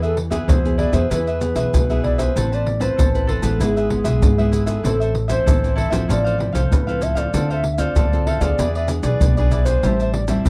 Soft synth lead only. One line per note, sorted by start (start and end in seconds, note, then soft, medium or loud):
0.04 0.18 A4 medium
0.32 0.47 G#4 medium
0.48 0.77 C5 loud
0.78 0.95 D5 medium
0.93 1.10 C5 medium
1.11 2.00 B4 loud
2.03 2.18 D5 loud
2.19 2.55 C5 medium
2.54 2.81 D5 loud
2.81 3.31 C5 loud
3.29 3.63 A4 medium
3.62 4.53 G#4 loud
4.53 4.67 G#4 medium
4.67 5.26 A4 medium
5.30 5.74 C5 loud
5.78 5.92 E5 medium
6.10 6.53 D5 loud
6.54 6.73 C5 medium
6.71 7.04 B4 medium
7.02 7.19 E5 medium
7.17 7.49 D5 medium
7.51 7.73 E5 medium
7.73 7.80 E5 medium
7.78 8.27 D5 loud
8.26 8.40 E5 medium
8.41 8.71 D5 medium
8.76 8.89 E5 medium
9.04 9.48 D5 medium
9.50 9.65 D5 medium
9.65 10.10 C5 medium
10.12 10.26 D5 medium
10.46 10.49 C5 medium